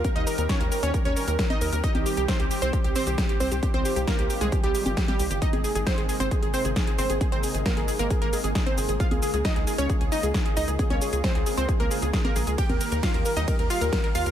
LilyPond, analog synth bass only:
\new Staff \with { instrumentName = "Analog synth bass" } { \clef bass \time 4/4 \key aes \major \tempo 4 = 134 r16 ees,16 r16 ees,16 r16 ees,16 r16 ees,16 r16 ees,16 r16 ees,16 r8 ees,16 ees,16 | r16 c,16 r16 c,16 r16 c,16 r16 c,16 r16 c,16 r16 c,16 r8 c,16 c,16 | r16 c,16 r16 c,16 r16 c,16 r16 c,16 r16 c,16 r16 g,,16 r8 c,16 g,,16 | r16 aes,,16 r16 aes,,16 r16 aes,,16 r16 aes,,16 r16 aes,,16 r16 aes,,16 r8 aes,,16 aes,,16 |
r16 aes,,16 r16 aes,,16 r16 aes,,16 r16 aes,,16 r16 aes,,16 r16 aes,,16 r8 aes,,16 aes,,16 | r16 des,16 r16 des,16 r16 des,16 r16 des,16 r16 des,16 r16 des,16 r8 des,16 des,16 | r16 des,16 r16 des,16 r16 des,16 r16 des,16 r16 des,16 r16 des,16 r8 bes,,16 des,16 | r16 ees,16 r16 ees,16 r16 ees,16 r16 ees,16 r16 ees,16 r16 ees,16 r8 ees,16 ees,16 | }